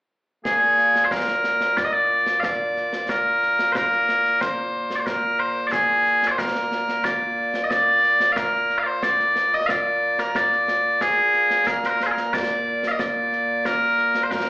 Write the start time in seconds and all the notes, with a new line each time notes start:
0.45 A#2 A#3 G#4, concert bass drum, snare
0.78 snare
0.96 snare
1.05 C5
1.11 A#4, concert bass drum, snare
1.28 snare
1.44 snare
1.61 snare
1.77 D5, concert bass drum, snare
1.84 D#5
1.92 D5
2.26 snare
2.40 F5, concert bass drum, snare
2.44 D5
2.76 snare
2.93 snare
3.09 A#4, concert bass drum, snare
3.43 snare
3.59 snare
3.72 A#4 C5, concert bass drum, snare
3.92 snare
4.09 snare
4.25 snare
4.41 C5, concert bass drum, snare
4.90 snare
4.96 D5
5.00 C5
5.06 A#4, concert bass drum, snare
5.39 C5
5.67 D5
5.72 G#4, concert bass drum, snare
6.06 snare
6.23 snare
6.27 C5 D5
6.38 A#4, concert bass drum, snare
6.56 snare
6.72 snare
6.89 snare
7.04 D5, concert bass drum, snare
7.54 snare
7.64 D#5
7.70 D5, concert bass drum, snare
8.04 snare
8.20 snare
8.32 F5
8.36 A#4, concert bass drum, snare
8.70 snare
8.78 F5
8.83 C5 D5
9.03 D5, concert bass drum, snare
9.19 snare
9.36 snare
9.53 D#5, snare
9.66 D5 F5, concert bass drum, snare
10.19 A#4, snare
10.35 D5, concert bass drum, snare
10.52 snare
10.68 snare
11.01 G#4, concert bass drum, snare
11.34 snare
11.50 snare
11.67 A#4, concert bass drum, snare
11.84 C5, snare
11.89 A#4
12.01 C5, snare
12.06 G#4
12.11 A#4
12.17 snare
12.34 D5, concert bass drum, snare
12.83 snare
12.88 D#5 F5
12.99 D5, concert bass drum, snare
13.32 snare
13.65 A#4, concert bass drum, snare
13.98 snare
14.15 snare
14.23 C5
14.31 A#4, concert bass drum, snare